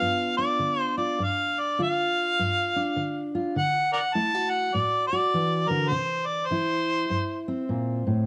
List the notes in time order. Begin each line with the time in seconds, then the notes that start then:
Already playing: B3 D4 F4 F5
0.01 G2
0.37 D4 D5
0.59 D3
0.80 C5
0.97 F4 D5
1.19 G2
1.24 F5
1.59 D5
1.79 D3 F4
1.83 F5
2.39 G2
2.76 D4
2.96 D3
3.35 F4
3.56 D3 F#5
3.93 A#4 D5 F#5
4.14 A3 E4 A5
4.35 F#4
4.50 F#5
4.74 A2 D5
5.07 D5
5.13 F#4
5.34 E3
5.69 D3 A#4
5.88 C3 C5
6.26 D5
6.46 C5
6.51 E3 E4
7.10 G2
7.48 C4
7.69 A#2
8.07 A2